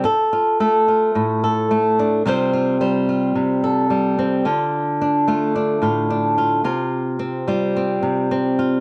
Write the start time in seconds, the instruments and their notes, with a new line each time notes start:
Already playing: nylon-string guitar F4
0.04 nylon-string guitar A4, muted nylon-string guitar stroke
0.33 nylon-string guitar F4
0.60 nylon-string guitar A3 A4
0.88 nylon-string guitar F4
1.15 nylon-string guitar A2
1.44 nylon-string guitar A4
1.71 nylon-string guitar A3
1.99 nylon-string guitar D4
2.26 nylon-string guitar C3 G3 C4 F4 C5
2.53 nylon-string guitar F4
2.81 nylon-string guitar G3 C5
3.09 nylon-string guitar F4
3.35 nylon-string guitar C3
3.64 nylon-string guitar A4
3.90 nylon-string guitar G3
4.19 nylon-string guitar C4
4.45 nylon-string guitar D3 F4
5.01 nylon-string guitar D4
5.28 nylon-string guitar A3 F4
5.55 nylon-string guitar D4
5.82 nylon-string guitar A2 F4
6.10 nylon-string guitar D4
6.38 nylon-string guitar F4
6.64 nylon-string guitar C3 F4
7.19 nylon-string guitar C4
7.48 nylon-string guitar G3 F4
7.77 nylon-string guitar C4
8.03 nylon-string guitar C3
8.31 nylon-string guitar C4
8.59 nylon-string guitar F4